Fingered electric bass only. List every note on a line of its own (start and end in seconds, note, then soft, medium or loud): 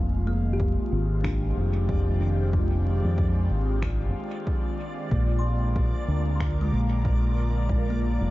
0.00 0.75 F1 medium
0.92 1.54 G#1 medium
1.57 3.01 F1 medium
3.05 3.48 F2 medium
3.50 4.12 G#1 medium
5.11 5.91 A#1 medium
6.08 6.70 D2 medium
6.73 8.17 A#1 medium
8.21 8.30 F1 medium